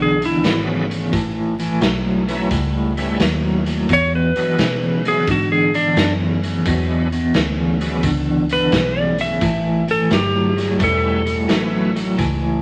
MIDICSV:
0, 0, Header, 1, 7, 480
1, 0, Start_track
1, 0, Tempo, 690846
1, 784, Time_signature, 4, 2, 24, 8
1, 8768, End_track
2, 0, Start_track
2, 0, Title_t, "Electric slide guitar"
2, 0, Program_c, 0, 29
2, 15, Note_on_c, 0, 68, 83
2, 155, Note_off_c, 0, 68, 0
2, 177, Note_on_c, 0, 64, 87
2, 421, Note_off_c, 0, 64, 0
2, 2732, Note_on_c, 0, 73, 94
2, 2874, Note_off_c, 0, 73, 0
2, 2886, Note_on_c, 0, 71, 80
2, 3497, Note_off_c, 0, 71, 0
2, 3530, Note_on_c, 0, 68, 86
2, 3673, Note_off_c, 0, 68, 0
2, 3690, Note_on_c, 0, 66, 75
2, 3833, Note_off_c, 0, 66, 0
2, 3834, Note_on_c, 0, 68, 89
2, 3985, Note_off_c, 0, 68, 0
2, 3997, Note_on_c, 0, 62, 96
2, 4251, Note_off_c, 0, 62, 0
2, 5924, Note_on_c, 0, 71, 86
2, 6248, Note_off_c, 0, 71, 0
2, 6248, Note_on_c, 0, 74, 91
2, 6392, Note_off_c, 0, 74, 0
2, 6399, Note_on_c, 0, 76, 73
2, 6858, Note_off_c, 0, 76, 0
2, 6885, Note_on_c, 0, 69, 72
2, 7031, Note_off_c, 0, 69, 0
2, 7040, Note_on_c, 0, 67, 88
2, 7499, Note_off_c, 0, 67, 0
2, 7528, Note_on_c, 0, 69, 89
2, 8449, Note_off_c, 0, 69, 0
2, 8768, End_track
3, 0, Start_track
3, 0, Title_t, "Tonewheel organ"
3, 0, Program_c, 1, 16
3, 299, Note_on_c, 1, 54, 62
3, 300, Note_on_c, 1, 56, 55
3, 303, Note_on_c, 1, 59, 64
3, 305, Note_on_c, 1, 74, 62
3, 308, Note_on_c, 1, 64, 70
3, 593, Note_off_c, 1, 54, 0
3, 594, Note_off_c, 1, 56, 0
3, 595, Note_off_c, 1, 59, 0
3, 596, Note_off_c, 1, 74, 0
3, 598, Note_off_c, 1, 64, 0
3, 1580, Note_on_c, 1, 52, 67
3, 1583, Note_on_c, 1, 57, 67
3, 1585, Note_on_c, 1, 59, 65
3, 1586, Note_on_c, 1, 61, 63
3, 1591, Note_on_c, 1, 64, 78
3, 1725, Note_off_c, 1, 52, 0
3, 1726, Note_off_c, 1, 57, 0
3, 1727, Note_off_c, 1, 59, 0
3, 1728, Note_off_c, 1, 61, 0
3, 1730, Note_off_c, 1, 64, 0
3, 2064, Note_on_c, 1, 55, 75
3, 2065, Note_on_c, 1, 57, 66
3, 2068, Note_on_c, 1, 59, 60
3, 2072, Note_on_c, 1, 61, 65
3, 2072, Note_on_c, 1, 64, 72
3, 2207, Note_off_c, 1, 55, 0
3, 2207, Note_off_c, 1, 57, 0
3, 2209, Note_off_c, 1, 59, 0
3, 2211, Note_off_c, 1, 61, 0
3, 2211, Note_off_c, 1, 64, 0
3, 3025, Note_on_c, 1, 54, 68
3, 3028, Note_on_c, 1, 56, 64
3, 3030, Note_on_c, 1, 59, 62
3, 3033, Note_on_c, 1, 62, 59
3, 3036, Note_on_c, 1, 64, 78
3, 3167, Note_off_c, 1, 54, 0
3, 3169, Note_off_c, 1, 56, 0
3, 3170, Note_off_c, 1, 59, 0
3, 3171, Note_off_c, 1, 62, 0
3, 3173, Note_off_c, 1, 64, 0
3, 3503, Note_on_c, 1, 54, 73
3, 3507, Note_on_c, 1, 56, 68
3, 3510, Note_on_c, 1, 74, 72
3, 3511, Note_on_c, 1, 59, 71
3, 3514, Note_on_c, 1, 64, 74
3, 3646, Note_off_c, 1, 54, 0
3, 3649, Note_off_c, 1, 56, 0
3, 3650, Note_off_c, 1, 59, 0
3, 3650, Note_off_c, 1, 74, 0
3, 3652, Note_off_c, 1, 64, 0
3, 4620, Note_on_c, 1, 54, 55
3, 4623, Note_on_c, 1, 56, 55
3, 4625, Note_on_c, 1, 59, 55
3, 4629, Note_on_c, 1, 62, 52
3, 4632, Note_on_c, 1, 64, 65
3, 4914, Note_off_c, 1, 54, 0
3, 4915, Note_off_c, 1, 56, 0
3, 4916, Note_off_c, 1, 59, 0
3, 4919, Note_off_c, 1, 62, 0
3, 4920, Note_off_c, 1, 64, 0
3, 5424, Note_on_c, 1, 54, 80
3, 5425, Note_on_c, 1, 56, 73
3, 5429, Note_on_c, 1, 59, 69
3, 5430, Note_on_c, 1, 74, 63
3, 5433, Note_on_c, 1, 64, 84
3, 5567, Note_off_c, 1, 54, 0
3, 5568, Note_off_c, 1, 56, 0
3, 5569, Note_off_c, 1, 59, 0
3, 5570, Note_off_c, 1, 74, 0
3, 5572, Note_off_c, 1, 64, 0
3, 7496, Note_on_c, 1, 55, 54
3, 7500, Note_on_c, 1, 57, 52
3, 7502, Note_on_c, 1, 59, 49
3, 7505, Note_on_c, 1, 61, 50
3, 7510, Note_on_c, 1, 64, 59
3, 7792, Note_off_c, 1, 55, 0
3, 7794, Note_off_c, 1, 57, 0
3, 7795, Note_off_c, 1, 59, 0
3, 7797, Note_off_c, 1, 61, 0
3, 7799, Note_off_c, 1, 64, 0
3, 7977, Note_on_c, 1, 52, 71
3, 7978, Note_on_c, 1, 57, 61
3, 7983, Note_on_c, 1, 59, 68
3, 7984, Note_on_c, 1, 61, 64
3, 7988, Note_on_c, 1, 64, 79
3, 8273, Note_off_c, 1, 52, 0
3, 8273, Note_off_c, 1, 57, 0
3, 8276, Note_off_c, 1, 59, 0
3, 8276, Note_off_c, 1, 61, 0
3, 8278, Note_off_c, 1, 64, 0
3, 8768, End_track
4, 0, Start_track
4, 0, Title_t, "Clean electric guitar"
4, 0, Program_c, 2, 27
4, 0, Note_on_c, 2, 40, 72
4, 0, Note_on_c, 2, 50, 93
4, 116, Note_off_c, 2, 40, 0
4, 117, Note_off_c, 2, 50, 0
4, 142, Note_on_c, 2, 40, 73
4, 146, Note_on_c, 2, 50, 83
4, 286, Note_off_c, 2, 40, 0
4, 288, Note_off_c, 2, 50, 0
4, 303, Note_on_c, 2, 40, 66
4, 304, Note_on_c, 2, 49, 89
4, 595, Note_off_c, 2, 40, 0
4, 596, Note_off_c, 2, 49, 0
4, 623, Note_on_c, 2, 40, 64
4, 626, Note_on_c, 2, 49, 85
4, 766, Note_off_c, 2, 40, 0
4, 768, Note_off_c, 2, 49, 0
4, 778, Note_on_c, 2, 45, 75
4, 782, Note_on_c, 2, 52, 79
4, 1073, Note_off_c, 2, 45, 0
4, 1075, Note_off_c, 2, 52, 0
4, 1106, Note_on_c, 2, 45, 77
4, 1110, Note_on_c, 2, 52, 84
4, 1248, Note_off_c, 2, 45, 0
4, 1250, Note_off_c, 2, 52, 0
4, 1258, Note_on_c, 2, 45, 69
4, 1261, Note_on_c, 2, 54, 86
4, 1553, Note_off_c, 2, 45, 0
4, 1554, Note_off_c, 2, 54, 0
4, 1584, Note_on_c, 2, 45, 85
4, 1589, Note_on_c, 2, 54, 90
4, 1727, Note_off_c, 2, 45, 0
4, 1730, Note_off_c, 2, 54, 0
4, 1743, Note_on_c, 2, 45, 72
4, 1748, Note_on_c, 2, 55, 75
4, 2035, Note_off_c, 2, 45, 0
4, 2038, Note_off_c, 2, 55, 0
4, 2065, Note_on_c, 2, 45, 75
4, 2069, Note_on_c, 2, 55, 90
4, 2207, Note_off_c, 2, 45, 0
4, 2209, Note_off_c, 2, 55, 0
4, 2222, Note_on_c, 2, 45, 69
4, 2224, Note_on_c, 2, 54, 93
4, 2515, Note_off_c, 2, 45, 0
4, 2516, Note_off_c, 2, 54, 0
4, 2544, Note_on_c, 2, 45, 69
4, 2548, Note_on_c, 2, 54, 67
4, 2687, Note_off_c, 2, 45, 0
4, 2689, Note_off_c, 2, 54, 0
4, 2706, Note_on_c, 2, 40, 74
4, 2709, Note_on_c, 2, 47, 77
4, 2997, Note_off_c, 2, 40, 0
4, 2998, Note_off_c, 2, 47, 0
4, 3029, Note_on_c, 2, 40, 72
4, 3033, Note_on_c, 2, 47, 87
4, 3170, Note_off_c, 2, 40, 0
4, 3171, Note_off_c, 2, 47, 0
4, 3184, Note_on_c, 2, 40, 75
4, 3186, Note_on_c, 2, 49, 94
4, 3476, Note_off_c, 2, 40, 0
4, 3477, Note_off_c, 2, 49, 0
4, 3508, Note_on_c, 2, 40, 69
4, 3513, Note_on_c, 2, 49, 86
4, 3649, Note_off_c, 2, 40, 0
4, 3652, Note_off_c, 2, 49, 0
4, 3663, Note_on_c, 2, 40, 67
4, 3669, Note_on_c, 2, 50, 80
4, 3956, Note_off_c, 2, 40, 0
4, 3959, Note_off_c, 2, 50, 0
4, 3987, Note_on_c, 2, 40, 78
4, 3990, Note_on_c, 2, 50, 93
4, 4129, Note_off_c, 2, 40, 0
4, 4130, Note_off_c, 2, 50, 0
4, 4146, Note_on_c, 2, 40, 74
4, 4149, Note_on_c, 2, 49, 81
4, 4437, Note_off_c, 2, 40, 0
4, 4439, Note_off_c, 2, 49, 0
4, 4472, Note_on_c, 2, 40, 65
4, 4474, Note_on_c, 2, 49, 67
4, 4611, Note_off_c, 2, 40, 0
4, 4612, Note_off_c, 2, 49, 0
4, 4629, Note_on_c, 2, 40, 81
4, 4630, Note_on_c, 2, 47, 91
4, 4918, Note_off_c, 2, 40, 0
4, 4919, Note_off_c, 2, 47, 0
4, 4948, Note_on_c, 2, 40, 80
4, 4951, Note_on_c, 2, 47, 78
4, 5089, Note_off_c, 2, 40, 0
4, 5090, Note_off_c, 2, 47, 0
4, 5104, Note_on_c, 2, 40, 80
4, 5106, Note_on_c, 2, 49, 79
4, 5396, Note_off_c, 2, 40, 0
4, 5397, Note_off_c, 2, 49, 0
4, 5427, Note_on_c, 2, 40, 69
4, 5429, Note_on_c, 2, 49, 85
4, 5569, Note_off_c, 2, 40, 0
4, 5570, Note_off_c, 2, 49, 0
4, 5582, Note_on_c, 2, 40, 75
4, 5586, Note_on_c, 2, 50, 79
4, 5875, Note_off_c, 2, 40, 0
4, 5877, Note_off_c, 2, 50, 0
4, 5907, Note_on_c, 2, 40, 76
4, 5912, Note_on_c, 2, 50, 90
4, 6049, Note_off_c, 2, 40, 0
4, 6051, Note_off_c, 2, 50, 0
4, 6064, Note_on_c, 2, 40, 81
4, 6065, Note_on_c, 2, 49, 89
4, 6356, Note_off_c, 2, 40, 0
4, 6357, Note_off_c, 2, 49, 0
4, 6383, Note_on_c, 2, 40, 62
4, 6389, Note_on_c, 2, 49, 75
4, 6527, Note_off_c, 2, 40, 0
4, 6530, Note_off_c, 2, 49, 0
4, 6541, Note_on_c, 2, 45, 77
4, 6545, Note_on_c, 2, 52, 80
4, 6835, Note_off_c, 2, 45, 0
4, 6836, Note_off_c, 2, 52, 0
4, 6863, Note_on_c, 2, 45, 72
4, 6866, Note_on_c, 2, 52, 85
4, 7007, Note_off_c, 2, 45, 0
4, 7008, Note_off_c, 2, 52, 0
4, 7017, Note_on_c, 2, 45, 74
4, 7019, Note_on_c, 2, 54, 83
4, 7313, Note_off_c, 2, 45, 0
4, 7314, Note_off_c, 2, 54, 0
4, 7340, Note_on_c, 2, 45, 82
4, 7346, Note_on_c, 2, 54, 82
4, 7485, Note_off_c, 2, 45, 0
4, 7488, Note_off_c, 2, 54, 0
4, 7499, Note_on_c, 2, 45, 77
4, 7502, Note_on_c, 2, 55, 92
4, 7794, Note_off_c, 2, 45, 0
4, 7795, Note_off_c, 2, 55, 0
4, 7821, Note_on_c, 2, 45, 84
4, 7824, Note_on_c, 2, 55, 75
4, 7966, Note_off_c, 2, 45, 0
4, 7967, Note_off_c, 2, 55, 0
4, 7978, Note_on_c, 2, 45, 85
4, 7985, Note_on_c, 2, 54, 88
4, 8273, Note_off_c, 2, 45, 0
4, 8277, Note_off_c, 2, 54, 0
4, 8304, Note_on_c, 2, 45, 69
4, 8308, Note_on_c, 2, 54, 82
4, 8447, Note_off_c, 2, 45, 0
4, 8449, Note_off_c, 2, 54, 0
4, 8460, Note_on_c, 2, 45, 76
4, 8464, Note_on_c, 2, 52, 86
4, 8754, Note_off_c, 2, 45, 0
4, 8756, Note_off_c, 2, 52, 0
4, 8768, End_track
5, 0, Start_track
5, 0, Title_t, "Fingered electric bass"
5, 0, Program_c, 3, 33
5, 0, Note_on_c, 3, 35, 90
5, 290, Note_off_c, 3, 35, 0
5, 299, Note_on_c, 3, 32, 96
5, 767, Note_off_c, 3, 32, 0
5, 786, Note_on_c, 3, 33, 87
5, 1251, Note_off_c, 3, 33, 0
5, 1260, Note_on_c, 3, 35, 95
5, 1728, Note_off_c, 3, 35, 0
5, 1745, Note_on_c, 3, 37, 90
5, 2210, Note_off_c, 3, 37, 0
5, 2220, Note_on_c, 3, 39, 98
5, 2688, Note_off_c, 3, 39, 0
5, 2703, Note_on_c, 3, 40, 88
5, 3005, Note_off_c, 3, 40, 0
5, 3184, Note_on_c, 3, 47, 91
5, 3650, Note_off_c, 3, 47, 0
5, 3667, Note_on_c, 3, 44, 95
5, 4132, Note_off_c, 3, 44, 0
5, 4140, Note_on_c, 3, 42, 94
5, 4608, Note_off_c, 3, 42, 0
5, 4623, Note_on_c, 3, 40, 86
5, 5090, Note_off_c, 3, 40, 0
5, 5104, Note_on_c, 3, 38, 92
5, 5570, Note_off_c, 3, 38, 0
5, 5582, Note_on_c, 3, 37, 82
5, 6049, Note_off_c, 3, 37, 0
5, 6062, Note_on_c, 3, 35, 86
5, 6529, Note_off_c, 3, 35, 0
5, 6542, Note_on_c, 3, 33, 89
5, 7009, Note_off_c, 3, 33, 0
5, 7026, Note_on_c, 3, 31, 90
5, 7491, Note_off_c, 3, 31, 0
5, 7503, Note_on_c, 3, 28, 88
5, 7970, Note_off_c, 3, 28, 0
5, 7984, Note_on_c, 3, 33, 83
5, 8450, Note_off_c, 3, 33, 0
5, 8466, Note_on_c, 3, 37, 85
5, 8768, Note_off_c, 3, 37, 0
5, 8768, End_track
6, 0, Start_track
6, 0, Title_t, "Muted fingered electric bass strokes"
6, 3032, Note_on_c, 9, 29, 37
6, 3101, Note_off_c, 9, 29, 0
6, 8768, End_track
7, 0, Start_track
7, 0, Title_t, "Drums"
7, 153, Note_on_c, 9, 42, 59
7, 222, Note_off_c, 9, 42, 0
7, 306, Note_on_c, 9, 42, 86
7, 310, Note_on_c, 9, 38, 122
7, 376, Note_off_c, 9, 42, 0
7, 380, Note_off_c, 9, 38, 0
7, 632, Note_on_c, 9, 42, 61
7, 702, Note_off_c, 9, 42, 0
7, 785, Note_on_c, 9, 36, 102
7, 787, Note_on_c, 9, 42, 75
7, 854, Note_off_c, 9, 36, 0
7, 857, Note_off_c, 9, 42, 0
7, 1108, Note_on_c, 9, 42, 62
7, 1178, Note_off_c, 9, 42, 0
7, 1261, Note_on_c, 9, 42, 78
7, 1265, Note_on_c, 9, 38, 116
7, 1330, Note_off_c, 9, 42, 0
7, 1335, Note_off_c, 9, 38, 0
7, 1588, Note_on_c, 9, 42, 62
7, 1657, Note_off_c, 9, 42, 0
7, 1743, Note_on_c, 9, 42, 83
7, 1744, Note_on_c, 9, 36, 107
7, 1812, Note_off_c, 9, 42, 0
7, 1813, Note_off_c, 9, 36, 0
7, 2065, Note_on_c, 9, 42, 57
7, 2134, Note_off_c, 9, 42, 0
7, 2221, Note_on_c, 9, 42, 92
7, 2225, Note_on_c, 9, 38, 114
7, 2291, Note_off_c, 9, 42, 0
7, 2295, Note_off_c, 9, 38, 0
7, 2544, Note_on_c, 9, 42, 72
7, 2614, Note_off_c, 9, 42, 0
7, 2704, Note_on_c, 9, 36, 107
7, 2705, Note_on_c, 9, 42, 76
7, 2774, Note_off_c, 9, 36, 0
7, 2774, Note_off_c, 9, 42, 0
7, 3028, Note_on_c, 9, 42, 58
7, 3097, Note_off_c, 9, 42, 0
7, 3186, Note_on_c, 9, 42, 88
7, 3190, Note_on_c, 9, 38, 109
7, 3256, Note_off_c, 9, 42, 0
7, 3260, Note_off_c, 9, 38, 0
7, 3510, Note_on_c, 9, 42, 62
7, 3580, Note_off_c, 9, 42, 0
7, 3663, Note_on_c, 9, 42, 77
7, 3665, Note_on_c, 9, 36, 107
7, 3733, Note_off_c, 9, 42, 0
7, 3735, Note_off_c, 9, 36, 0
7, 3990, Note_on_c, 9, 42, 57
7, 4060, Note_off_c, 9, 42, 0
7, 4146, Note_on_c, 9, 42, 84
7, 4150, Note_on_c, 9, 38, 117
7, 4215, Note_off_c, 9, 42, 0
7, 4219, Note_off_c, 9, 38, 0
7, 4471, Note_on_c, 9, 42, 62
7, 4540, Note_off_c, 9, 42, 0
7, 4624, Note_on_c, 9, 42, 73
7, 4625, Note_on_c, 9, 36, 104
7, 4694, Note_off_c, 9, 36, 0
7, 4694, Note_off_c, 9, 42, 0
7, 4950, Note_on_c, 9, 42, 55
7, 5019, Note_off_c, 9, 42, 0
7, 5101, Note_on_c, 9, 42, 78
7, 5105, Note_on_c, 9, 38, 108
7, 5170, Note_off_c, 9, 42, 0
7, 5175, Note_off_c, 9, 38, 0
7, 5425, Note_on_c, 9, 42, 63
7, 5495, Note_off_c, 9, 42, 0
7, 5579, Note_on_c, 9, 42, 79
7, 5581, Note_on_c, 9, 36, 106
7, 5648, Note_off_c, 9, 42, 0
7, 5651, Note_off_c, 9, 36, 0
7, 5901, Note_on_c, 9, 42, 59
7, 5970, Note_off_c, 9, 42, 0
7, 6059, Note_on_c, 9, 42, 92
7, 6061, Note_on_c, 9, 36, 88
7, 6063, Note_on_c, 9, 38, 115
7, 6128, Note_off_c, 9, 42, 0
7, 6130, Note_off_c, 9, 36, 0
7, 6133, Note_off_c, 9, 38, 0
7, 6381, Note_on_c, 9, 42, 65
7, 6451, Note_off_c, 9, 42, 0
7, 6540, Note_on_c, 9, 42, 83
7, 6541, Note_on_c, 9, 36, 103
7, 6609, Note_off_c, 9, 42, 0
7, 6611, Note_off_c, 9, 36, 0
7, 6867, Note_on_c, 9, 42, 57
7, 6936, Note_off_c, 9, 42, 0
7, 7023, Note_on_c, 9, 42, 78
7, 7027, Note_on_c, 9, 38, 99
7, 7092, Note_off_c, 9, 42, 0
7, 7096, Note_off_c, 9, 38, 0
7, 7351, Note_on_c, 9, 42, 64
7, 7355, Note_on_c, 9, 38, 33
7, 7420, Note_off_c, 9, 42, 0
7, 7424, Note_off_c, 9, 38, 0
7, 7503, Note_on_c, 9, 42, 82
7, 7504, Note_on_c, 9, 36, 105
7, 7572, Note_off_c, 9, 42, 0
7, 7574, Note_off_c, 9, 36, 0
7, 7828, Note_on_c, 9, 42, 61
7, 7898, Note_off_c, 9, 42, 0
7, 7983, Note_on_c, 9, 42, 85
7, 7987, Note_on_c, 9, 38, 120
7, 8053, Note_off_c, 9, 42, 0
7, 8057, Note_off_c, 9, 38, 0
7, 8312, Note_on_c, 9, 42, 66
7, 8381, Note_off_c, 9, 42, 0
7, 8465, Note_on_c, 9, 42, 76
7, 8467, Note_on_c, 9, 36, 101
7, 8534, Note_off_c, 9, 42, 0
7, 8536, Note_off_c, 9, 36, 0
7, 8768, End_track
0, 0, End_of_file